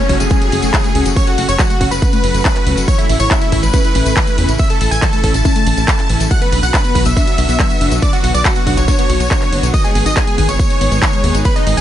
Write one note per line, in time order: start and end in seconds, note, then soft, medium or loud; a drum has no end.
0.00 0.14 C#3 medium
0.00 0.14 F#3 medium
0.00 0.14 A3 medium
0.00 0.14 F#4 loud
0.00 downlifter medium
0.09 0.18 F#1 medium
0.09 0.16 F#3 medium
0.09 0.18 C#4 medium
0.09 0.18 C#5 medium
0.09 kick medium
0.09 open hi-hat loud
0.20 0.29 F#1 medium
0.20 0.30 A3 medium
0.20 1.08 G#4 loud
0.20 1.08 G#5 loud
0.20 closed hi-hat medium
0.20 tambourine medium
0.30 0.40 C#4 medium
0.30 kick loud
0.30 closed hi-hat medium
0.30 tambourine medium
0.41 0.49 C#3 medium
0.41 0.49 F#3 medium
0.41 0.49 A3 loud
0.41 0.49 F#4 medium
0.41 0.51 F#4 medium
0.41 closed hi-hat medium
0.41 tambourine soft
0.52 0.61 F#1 medium
0.52 0.67 C#3 medium
0.52 0.67 F#3 medium
0.52 0.67 A3 medium
0.52 0.59 C#4 medium
0.52 0.67 F#4 medium
0.52 open hi-hat loud
0.62 0.72 F#1 medium
0.62 0.73 A3 loud
0.62 closed hi-hat medium
0.62 tambourine medium
0.74 0.89 C#3 medium
0.74 0.89 F#3 medium
0.74 0.80 F#3 medium
0.74 0.89 A3 medium
0.74 0.89 F#4 medium
0.74 kick loud
0.74 clap loud
0.74 closed hi-hat medium
0.74 tambourine medium
0.84 0.91 A3 medium
0.84 closed hi-hat medium
0.84 tambourine soft
0.95 1.04 C#2 loud
0.95 1.10 C#3 medium
0.95 1.10 F#3 medium
0.95 1.10 A3 medium
0.95 1.05 C#4 loud
0.95 1.10 F#4 medium
0.95 open hi-hat loud
1.05 1.15 F#1 medium
1.05 1.12 F#4 medium
1.05 closed hi-hat medium
1.05 tambourine medium
1.16 1.31 C#3 medium
1.16 1.31 F#3 medium
1.16 1.31 A3 medium
1.16 1.20 C#4 medium
1.16 1.31 F#4 medium
1.16 1.25 C#5 loud
1.16 1.25 C#6 loud
1.16 kick loud
1.16 closed hi-hat medium
1.16 tambourine medium
1.27 1.36 F#4 medium
1.27 1.36 F#5 medium
1.27 closed hi-hat medium
1.27 tambourine soft
1.38 1.47 F#1 medium
1.38 1.44 A3 medium
1.38 1.47 F#4 medium
1.38 1.47 F#5 medium
1.38 open hi-hat loud
1.49 1.58 F#1 medium
1.49 1.58 C#5 loud
1.49 1.58 C#6 medium
1.49 closed hi-hat medium
1.49 tambourine medium
1.59 1.67 C#3 medium
1.59 1.67 F#3 medium
1.59 1.63 F#3 loud
1.59 1.67 A3 medium
1.59 1.68 F#4 medium
1.59 1.67 F#4 medium
1.59 1.68 F#5 medium
1.59 kick loud
1.59 clap loud
1.59 closed hi-hat medium
1.59 tambourine medium
1.70 1.85 C#3 medium
1.70 1.85 F#3 medium
1.70 1.74 A3 medium
1.70 1.85 A3 medium
1.70 1.79 F#4 medium
1.70 1.85 F#4 loud
1.70 1.79 F#5 medium
1.70 closed hi-hat medium
1.70 tambourine soft
1.81 1.90 F#1 loud
1.81 1.91 C#4 loud
1.81 1.90 F#4 medium
1.81 1.90 F#5 medium
1.81 kick medium
1.81 open hi-hat loud
1.91 2.01 F#1 medium
1.91 1.95 F#4 medium
1.91 2.79 B4 loud
1.91 2.79 B5 loud
1.91 closed hi-hat medium
1.91 tambourine medium
2.02 2.09 C#4 loud
2.02 kick loud
2.02 closed hi-hat medium
2.02 tambourine medium
2.13 2.20 C#3 medium
2.13 2.21 F#3 medium
2.13 2.20 A3 medium
2.13 2.17 A3 loud
2.13 2.20 F#4 medium
2.13 closed hi-hat medium
2.13 tambourine soft
2.23 2.33 F#1 medium
2.23 2.39 C#3 medium
2.23 2.39 F#3 medium
2.23 2.30 F#3 medium
2.23 2.39 A3 medium
2.23 2.39 F#4 medium
2.23 open hi-hat loud
2.34 2.43 F#1 medium
2.34 2.44 A3 medium
2.34 closed hi-hat medium
2.34 tambourine medium
2.45 2.60 C#3 medium
2.45 2.60 F#3 medium
2.45 2.60 A3 medium
2.45 2.49 C#4 loud
2.45 2.60 F#4 medium
2.45 kick loud
2.45 clap loud
2.45 closed hi-hat medium
2.45 tambourine medium
2.55 2.60 F#4 medium
2.55 clap soft
2.55 closed hi-hat medium
2.55 tambourine soft
2.66 2.75 C#2 loud
2.66 2.81 C#3 medium
2.66 2.81 F#3 loud
2.66 2.81 A3 medium
2.66 2.76 C#4 medium
2.66 2.81 F#4 medium
2.66 open hi-hat loud
2.77 2.86 F#1 medium
2.77 closed hi-hat medium
2.77 tambourine medium
2.88 3.03 C#3 medium
2.88 3.03 E3 medium
2.88 2.94 E3 loud
2.88 3.03 A3 medium
2.88 3.03 E4 medium
2.88 2.97 C#5 loud
2.88 2.97 C#6 loud
2.88 kick loud
2.88 closed hi-hat medium
2.88 tambourine medium
2.98 3.08 A3 medium
2.98 3.07 E4 medium
2.98 3.08 E5 medium
2.98 closed hi-hat medium
2.98 tambourine soft
3.09 3.18 A1 medium
3.09 3.16 C#4 medium
3.09 3.18 E4 medium
3.09 3.18 E5 medium
3.09 open hi-hat loud
3.20 3.29 A1 medium
3.20 3.30 E4 loud
3.20 3.29 C#5 loud
3.20 3.29 C#6 loud
3.20 closed hi-hat medium
3.20 tambourine medium
3.31 3.38 C#3 medium
3.31 3.38 E3 medium
3.31 3.38 A3 medium
3.31 3.35 C#4 medium
3.31 3.40 E4 medium
3.31 3.38 E4 medium
3.31 3.40 E5 medium
3.31 kick loud
3.31 clap loud
3.31 closed hi-hat medium
3.31 tambourine medium
3.41 3.57 C#3 medium
3.41 3.57 E3 medium
3.41 3.48 A3 medium
3.41 3.57 A3 loud
3.41 3.50 E4 medium
3.41 3.57 E4 medium
3.41 3.50 E5 medium
3.41 closed hi-hat medium
3.41 tambourine soft
3.52 3.61 A1 loud
3.52 3.59 E3 medium
3.52 3.61 E4 medium
3.52 3.61 E5 medium
3.52 kick medium
3.52 open hi-hat loud
3.63 3.72 A1 medium
3.63 3.73 A3 medium
3.63 4.51 B4 loud
3.63 4.51 B5 loud
3.63 closed hi-hat medium
3.63 tambourine medium
3.73 3.83 C#4 medium
3.73 kick loud
3.73 closed hi-hat medium
3.73 tambourine medium
3.84 3.92 C#3 medium
3.84 3.92 E3 medium
3.84 3.92 A3 medium
3.84 3.94 E4 medium
3.84 3.92 E4 medium
3.84 closed hi-hat medium
3.84 tambourine soft
3.95 4.04 A1 medium
3.95 4.10 C#3 medium
3.95 4.10 E3 medium
3.95 4.10 A3 medium
3.95 4.02 C#4 medium
3.95 4.10 E4 medium
3.95 open hi-hat loud
4.06 4.15 A1 medium
4.06 4.16 A3 loud
4.06 closed hi-hat medium
4.06 tambourine medium
4.17 4.32 C#3 medium
4.17 4.23 E3 medium
4.17 4.32 E3 medium
4.17 4.32 A3 medium
4.17 4.32 E4 medium
4.17 kick loud
4.17 clap loud
4.17 closed hi-hat medium
4.17 tambourine medium
4.27 4.34 A3 medium
4.27 closed hi-hat medium
4.27 tambourine soft
4.38 4.47 E2 loud
4.38 4.53 C#3 medium
4.38 4.53 E3 medium
4.38 4.53 A3 medium
4.38 4.48 C#4 loud
4.38 4.53 E4 medium
4.38 open hi-hat loud
4.49 4.58 A1 medium
4.49 4.55 E4 medium
4.49 closed hi-hat medium
4.49 tambourine medium
4.58 4.74 C#3 medium
4.58 4.74 E3 medium
4.58 4.74 A3 medium
4.58 4.63 C#4 medium
4.58 4.74 E4 medium
4.58 4.68 E5 loud
4.58 4.68 E6 loud
4.58 kick loud
4.58 closed hi-hat medium
4.58 tambourine medium
4.70 4.79 A4 medium
4.70 4.79 A5 medium
4.70 closed hi-hat medium
4.70 tambourine soft
4.81 4.90 A1 medium
4.81 4.87 A3 medium
4.81 4.90 A4 medium
4.81 4.90 A5 medium
4.81 open hi-hat loud
4.91 5.01 A1 medium
4.91 5.00 G#5 medium
4.91 5.00 G#6 loud
4.91 closed hi-hat medium
4.91 tambourine medium
5.02 5.10 C#3 medium
5.02 5.10 E3 medium
5.02 5.06 E3 loud
5.02 5.10 A3 medium
5.02 5.10 E4 medium
5.02 5.11 A4 medium
5.02 5.11 A5 medium
5.02 kick loud
5.02 clap loud
5.02 closed hi-hat medium
5.02 tambourine medium
5.12 5.28 C#3 medium
5.12 5.28 E3 medium
5.12 5.28 A3 medium
5.12 5.17 A3 medium
5.12 5.28 E4 medium
5.12 5.22 A4 medium
5.12 5.22 A5 medium
5.12 closed hi-hat medium
5.12 tambourine soft
5.24 5.33 A1 medium
5.24 5.34 C#4 loud
5.24 5.33 A4 medium
5.24 5.33 A5 medium
5.24 kick medium
5.24 open hi-hat loud
5.34 5.43 A1 medium
5.34 5.38 E4 medium
5.34 6.22 A5 loud
5.34 6.22 A6 loud
5.34 closed hi-hat medium
5.34 tambourine medium
5.45 5.52 C#4 loud
5.45 kick loud
5.45 closed hi-hat medium
5.45 tambourine medium
5.55 5.63 C#3 medium
5.55 5.63 E3 medium
5.55 5.60 A3 loud
5.55 5.63 A3 medium
5.55 5.63 E4 medium
5.55 closed hi-hat medium
5.55 tambourine soft
5.66 5.76 A1 medium
5.66 5.82 C#3 medium
5.66 5.82 E3 medium
5.66 5.82 A3 medium
5.66 5.76 C#4 medium
5.66 5.82 E4 medium
5.66 open hi-hat loud
5.77 5.86 A1 medium
5.77 5.84 A4 medium
5.77 closed hi-hat medium
5.77 tambourine medium
5.88 6.03 C#3 medium
5.88 6.03 E3 medium
5.88 6.03 A3 medium
5.88 6.03 E4 medium
5.88 kick loud
5.88 clap loud
5.88 closed hi-hat medium
5.88 tambourine medium
5.98 6.05 A4 loud
5.98 clap soft
5.98 closed hi-hat medium
5.98 tambourine soft
6.09 6.18 A1 loud
6.09 6.25 C#3 medium
6.09 6.16 E3 loud
6.09 6.25 E3 medium
6.09 6.25 A3 medium
6.09 6.25 E4 medium
6.09 open hi-hat loud
6.20 6.29 A1 medium
6.20 closed hi-hat medium
6.20 tambourine medium
6.31 6.46 D3 medium
6.31 6.37 F#3 loud
6.31 6.46 F#3 medium
6.31 6.46 B3 medium
6.31 6.46 F#4 medium
6.31 6.40 F#5 loud
6.31 6.40 F#6 loud
6.31 kick loud
6.31 closed hi-hat medium
6.31 tambourine medium
6.42 6.51 B3 medium
6.42 6.50 B4 medium
6.42 6.51 B5 medium
6.42 closed hi-hat medium
6.42 tambourine soft
6.52 6.61 B1 medium
6.52 6.59 D4 medium
6.52 6.61 B4 medium
6.52 6.61 B5 medium
6.52 open hi-hat loud
6.63 6.72 B1 medium
6.63 6.73 F#4 loud
6.63 6.72 F#5 medium
6.63 6.72 F#6 medium
6.63 closed hi-hat medium
6.63 tambourine medium
6.74 6.81 D3 medium
6.74 6.81 F#3 medium
6.74 6.81 B3 medium
6.74 6.78 D4 medium
6.74 6.81 F#4 medium
6.74 6.83 B4 medium
6.74 6.83 B5 medium
6.74 kick loud
6.74 clap loud
6.74 closed hi-hat medium
6.74 tambourine medium
6.84 7.00 D3 medium
6.84 7.00 F#3 loud
6.84 6.91 B3 medium
6.84 7.00 B3 medium
6.84 7.00 F#4 loud
6.84 6.93 B4 medium
6.84 6.93 B5 medium
6.84 closed hi-hat medium
6.84 tambourine soft
6.95 7.04 B1 loud
6.95 7.02 F#3 medium
6.95 7.04 B4 medium
6.95 7.04 B5 medium
6.95 kick medium
6.95 open hi-hat loud
7.05 7.15 B1 medium
7.05 7.16 B3 medium
7.05 7.94 E5 loud
7.05 7.94 E6 loud
7.05 closed hi-hat medium
7.05 tambourine medium
7.17 7.26 D4 medium
7.17 kick loud
7.17 closed hi-hat medium
7.17 tambourine medium
7.27 7.35 D3 medium
7.27 7.35 F#3 medium
7.27 7.35 B3 medium
7.27 7.37 F#4 medium
7.27 7.35 F#4 medium
7.27 closed hi-hat medium
7.27 tambourine soft
7.38 7.47 B1 medium
7.38 7.53 D3 medium
7.38 7.53 F#3 medium
7.38 7.53 B3 medium
7.38 7.44 D4 medium
7.38 7.53 F#4 medium
7.38 open hi-hat loud
7.49 7.58 B1 medium
7.49 7.58 B3 loud
7.49 closed hi-hat medium
7.49 tambourine medium
7.59 7.75 D3 medium
7.59 7.66 F#3 medium
7.59 7.75 F#3 medium
7.59 7.75 B3 medium
7.59 7.75 F#4 medium
7.59 kick loud
7.59 clap loud
7.59 closed hi-hat medium
7.59 tambourine medium
7.70 7.77 B3 medium
7.70 closed hi-hat medium
7.70 tambourine soft
7.81 7.90 F#1 loud
7.81 7.96 D3 medium
7.81 7.96 F#3 medium
7.81 7.96 B3 medium
7.81 7.91 D4 loud
7.81 7.96 F#4 medium
7.81 open hi-hat loud
7.91 8.01 B1 medium
7.91 7.98 F#4 medium
7.91 closed hi-hat medium
7.91 tambourine medium
8.02 8.18 D3 medium
8.02 8.17 F#3 medium
8.02 8.18 B3 medium
8.02 8.06 D4 medium
8.02 8.17 F#4 medium
8.02 8.11 D5 loud
8.02 8.11 D6 loud
8.02 kick loud
8.02 closed hi-hat medium
8.02 tambourine medium
8.13 8.22 F#4 medium
8.13 8.22 F#5 medium
8.13 closed hi-hat medium
8.13 tambourine soft
8.23 8.33 B1 medium
8.23 8.30 B3 medium
8.23 8.32 F#4 medium
8.23 8.33 F#5 medium
8.23 open hi-hat loud
8.34 8.43 B1 medium
8.34 8.43 D5 loud
8.34 8.43 D6 loud
8.34 closed hi-hat medium
8.34 tambourine medium
8.45 8.53 D3 medium
8.45 8.49 F#3 loud
8.45 8.53 F#3 medium
8.45 8.53 B3 medium
8.45 8.54 F#4 medium
8.45 8.53 F#4 medium
8.45 8.54 F#5 medium
8.45 kick loud
8.45 clap loud
8.45 closed hi-hat medium
8.45 tambourine medium
8.55 8.71 D3 medium
8.55 8.71 F#3 medium
8.55 8.60 B3 medium
8.55 8.71 B3 medium
8.55 8.65 F#4 medium
8.55 8.71 F#4 loud
8.55 8.65 F#5 medium
8.55 closed hi-hat medium
8.55 tambourine soft
8.67 8.76 B1 loud
8.67 8.76 D4 loud
8.67 8.76 F#4 medium
8.67 8.76 F#5 medium
8.67 kick medium
8.67 open hi-hat loud
8.77 8.86 B1 medium
8.77 8.81 F#4 medium
8.77 9.65 C#5 loud
8.77 9.65 C#6 loud
8.77 closed hi-hat medium
8.77 tambourine medium
8.88 8.94 D4 loud
8.88 kick loud
8.88 closed hi-hat medium
8.88 tambourine medium
8.98 9.06 D3 medium
8.98 9.06 F#3 medium
8.98 9.03 B3 loud
8.98 9.06 B3 medium
8.98 9.06 F#4 loud
8.98 closed hi-hat medium
8.98 tambourine soft
9.09 9.18 B1 medium
9.09 9.25 D3 medium
9.09 9.16 F#3 medium
9.09 9.25 F#3 medium
9.09 9.25 B3 medium
9.09 9.25 F#4 medium
9.09 open hi-hat loud
9.20 9.29 B1 medium
9.20 9.30 B3 medium
9.20 closed hi-hat medium
9.20 tambourine medium
9.31 9.46 D3 medium
9.31 9.46 F#3 medium
9.31 9.46 B3 medium
9.31 9.35 D4 loud
9.31 9.46 F#4 medium
9.31 kick loud
9.31 clap loud
9.31 closed hi-hat medium
9.31 tambourine medium
9.42 9.45 F#4 medium
9.42 clap soft
9.42 closed hi-hat medium
9.42 tambourine soft
9.52 9.61 F#1 loud
9.52 9.67 D3 medium
9.52 9.67 F#3 medium
9.52 9.67 B3 medium
9.52 9.62 D4 medium
9.52 9.67 F#4 medium
9.52 open hi-hat loud
9.63 9.72 B1 medium
9.63 closed hi-hat medium
9.63 tambourine medium
9.74 9.80 D#3 loud
9.74 9.89 D#3 medium
9.74 9.89 G#3 medium
9.74 9.89 B3 medium
9.74 9.89 G#4 medium
9.74 9.83 D#5 loud
9.74 9.83 D#6 loud
9.74 kick loud
9.74 closed hi-hat medium
9.74 tambourine medium
9.84 9.94 G#3 medium
9.84 9.93 G#4 medium
9.84 9.93 G#5 medium
9.84 closed hi-hat medium
9.84 tambourine soft
9.95 10.04 G#1 medium
9.95 10.02 B3 medium
9.95 10.04 G#4 medium
9.95 10.04 G#5 medium
9.95 open hi-hat loud
10.06 10.15 G#1 medium
10.06 10.16 D#4 loud
10.06 10.15 D#5 medium
10.06 10.15 D#6 medium
10.06 closed hi-hat medium
10.06 tambourine medium
10.16 10.24 D#3 medium
10.16 10.24 G#3 medium
10.16 10.24 B3 medium
10.16 10.25 G#4 medium
10.16 10.24 G#4 medium
10.16 10.25 G#5 medium
10.16 kick loud
10.16 clap loud
10.16 closed hi-hat medium
10.16 tambourine medium
10.27 10.42 D#3 medium
10.27 10.34 G#3 medium
10.27 10.42 G#3 loud
10.27 10.42 B3 medium
10.27 10.36 G#4 medium
10.27 10.42 G#4 medium
10.27 10.36 G#5 medium
10.27 closed hi-hat medium
10.27 tambourine soft
10.38 10.47 G#1 loud
10.38 10.44 D#3 medium
10.38 10.47 G#4 medium
10.38 10.47 G#5 medium
10.38 kick medium
10.38 open hi-hat loud
10.49 10.58 G#1 medium
10.49 10.58 G#3 medium
10.49 11.37 C#5 loud
10.49 11.37 C#6 loud
10.49 closed hi-hat medium
10.49 tambourine medium
10.59 10.69 B3 medium
10.59 kick loud
10.59 closed hi-hat medium
10.59 tambourine medium
10.70 10.78 D#3 medium
10.70 10.78 G#3 medium
10.70 10.78 B3 medium
10.70 10.80 D#4 medium
10.70 10.78 G#4 medium
10.70 closed hi-hat medium
10.70 tambourine soft
10.81 10.90 G#1 medium
10.81 10.96 D#3 medium
10.81 10.96 G#3 medium
10.81 10.87 B3 medium
10.81 10.96 B3 medium
10.81 10.96 G#4 medium
10.81 open hi-hat loud
10.91 11.01 G#1 medium
10.91 11.01 G#3 loud
10.91 closed hi-hat medium
10.91 tambourine medium
11.02 11.09 D#3 medium
11.02 11.17 D#3 medium
11.02 11.17 G#3 medium
11.02 11.17 B3 medium
11.02 11.17 G#4 medium
11.02 kick loud
11.02 clap loud
11.02 closed hi-hat medium
11.02 tambourine medium
11.13 11.19 G#3 medium
11.13 closed hi-hat medium
11.13 tambourine soft
11.24 11.33 D#2 loud
11.24 11.39 D#3 medium
11.24 11.39 G#3 medium
11.24 11.33 B3 loud
11.24 11.39 B3 medium
11.24 11.39 G#4 medium
11.24 open hi-hat loud
11.34 11.43 G#1 medium
11.34 11.41 D#4 medium
11.34 closed hi-hat medium
11.34 tambourine medium
11.45 11.60 D#3 medium
11.45 11.60 G#3 medium
11.45 11.49 B3 medium
11.45 11.60 B3 medium
11.45 11.60 G#4 medium
11.45 11.54 B4 loud
11.45 11.54 B5 loud
11.45 kick loud
11.45 closed hi-hat medium
11.45 tambourine medium
11.56 11.65 D#4 medium
11.56 11.65 D#5 medium
11.56 closed hi-hat medium
11.56 tambourine soft
11.66 11.76 G#1 medium
11.66 11.73 G#3 medium
11.66 11.75 D#4 medium
11.66 11.76 D#5 medium
11.66 open hi-hat loud
11.77 11.81 G#1 medium
11.77 11.81 G#4 loud
11.77 11.81 G#5 medium
11.77 closed hi-hat medium